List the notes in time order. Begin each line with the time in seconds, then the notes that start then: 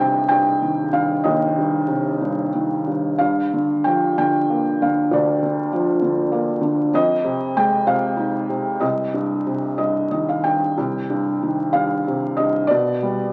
Already playing: C2 G2 D#3 D#5
0.00 C3 G5
0.29 G2 G5
0.62 D#3
0.93 G2 F5
1.24 D#2 D#5
1.58 G2
1.88 C3
2.22 G2
2.54 D#3
2.87 G2
3.18 G2 F5
3.53 D3
3.84 F3 G5
4.18 D3 G5
4.50 A#3
4.82 D3 F5
5.11 D2 D5
5.42 D3
5.73 F3
6.02 D3
6.32 A#3
6.61 D3
6.94 F2 D#5
7.24 C3
7.56 G#3 G5
7.87 C3 F5
8.17 D#4
8.49 C3
8.80 C2 D#5
9.14 G2
9.46 C3
9.78 G2 D#5
10.11 D#3 D#5
10.29 F5
10.44 G2 G5
10.78 C2
11.10 G2
11.42 D#3
11.73 G2 F5
12.08 C3
12.37 G2 D#5
12.67 B2 D5
13.02 G3